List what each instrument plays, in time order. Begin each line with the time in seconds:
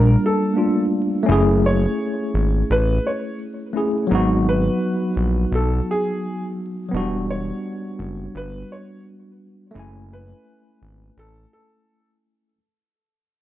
Already playing: analog synth bass A#1, tine electric piano G3 A#3 D4 F4, upright piano A#4
0.26 upright piano A4
0.54 tine electric piano A3 A#3 D4
0.58 tine electric piano F4
1.23 tine electric piano A3 C#4
1.29 analog synth bass F#1, tine electric piano E4 G#4
1.66 upright piano C#5
2.34 analog synth bass G#1
2.70 analog synth bass A1, upright piano B4
3.07 upright piano C#5
3.73 tine electric piano A3 C#4 E4
3.77 tine electric piano G#4
4.07 analog synth bass G#1, tine electric piano F#3 B3
4.12 tine electric piano D#4 F#4
4.49 upright piano B4
5.16 analog synth bass A#1
5.52 analog synth bass B1, upright piano A4
5.91 upright piano G#4
6.89 tine electric piano F#3 B3
6.93 analog synth bass E1, tine electric piano G3 D4 F#4
7.30 upright piano C#5
7.99 analog synth bass F#1
8.35 analog synth bass G1, upright piano B4
8.72 upright piano C#5
9.71 tine electric piano A3 C#4
9.75 analog synth bass F#1, tine electric piano E4
9.79 tine electric piano G#5
10.13 upright piano B4
10.82 analog synth bass G#1
11.17 analog synth bass A1, upright piano A4
11.53 upright piano A4